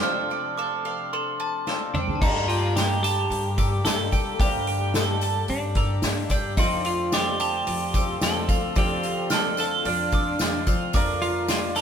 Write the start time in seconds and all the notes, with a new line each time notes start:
Already playing: C3 F3 A3 D4 D5 A5
0.02 F1 F2 F3 A3 C4 D4 F4 A4 C5 F6
0.30 C4 D4 A4 D5
0.57 F3 C4 D4 A4 D6
0.85 C4 D4 A4 F5
1.13 A4 C6
1.40 A5
1.67 F3 C4 D4 A4, snare
1.94 C4 D4 A4 D5, mid tom
2.08 floor tom
2.15 A5
2.21 G1 G2 A#2 D3 G3 A3 A#3 D4 D#4 G4 D5 A#5, kick, crash, tambourine
2.48 F4 G5, open hi-hat
2.75 G3 A#3 D4 G4, snare, open hi-hat, tambourine
3.03 G4 A5, open hi-hat, tambourine
3.30 G2, open hi-hat, tambourine
3.58 G3 A#3 D4 A4 D6, kick, open hi-hat, tambourine
3.85 G2 G3 A#3 D4 A4, snare, open hi-hat, tambourine
4.11 G3 A#3 D4 A4 G5, kick, open hi-hat, tambourine
4.39 G1 G2 D3 G3 A3 A#3 D4 G4 C5, kick, open hi-hat, tambourine
4.67 G5, open hi-hat
4.94 G3 A#3 D4 A4, snare, open hi-hat, tambourine
5.21 A5, open hi-hat, tambourine
5.48 G2 D4, open hi-hat, tambourine
5.75 G3 A#3 D4 A4 A#5, kick, open hi-hat
6.02 G2 G3 A#3 D4 A4, snare, open hi-hat, tambourine
6.29 G2 G3 A#3 D4 A4 G5, kick, open hi-hat, tambourine
6.57 F1 F2 F3 A3 C4 D4 D#4 F4 A4 D5 C6, kick, open hi-hat, tambourine
6.84 F4 F5, open hi-hat
7.12 F3 C4 D4 G4 A4 D5 D6, snare, open hi-hat, tambourine
7.40 G4 A5, open hi-hat, tambourine
7.67 F2 D5, open hi-hat, tambourine
7.94 D4 A4 D6, kick, open hi-hat, tambourine
7.98 C4
8.21 F2 F3 C4 D4 A4 D5, snare, open hi-hat, tambourine
8.49 F3 D4 A4 F5, kick, open hi-hat, tambourine
8.53 C4
8.76 F1 F2 F3 C4 D4 G4 A4 D5 F5, kick, open hi-hat, tambourine
9.03 F5, open hi-hat, tambourine
9.30 C4 D4 A4 D5 F6, snare, open hi-hat, tambourine
9.34 A4
9.57 A4 A5, snare, open hi-hat, tambourine
9.85 F2 D4 D5 F6, open hi-hat, tambourine
10.12 C4 D4 A4 D6, kick, open hi-hat, tambourine
10.39 F2 F3 C4 D4 A4 D5, snare, open hi-hat, tambourine
10.67 F3 C4 D4 A4 F5, kick, open hi-hat, tambourine
10.93 F1 F2 F3 A#3 D4 A#4 D5 D6, kick, open hi-hat, tambourine
11.22 F4 F5, open hi-hat
11.47 F3 A#3 D4 F4 A#4 D5, snare, open hi-hat, tambourine
11.76 A4 A#5, snare, open hi-hat, tambourine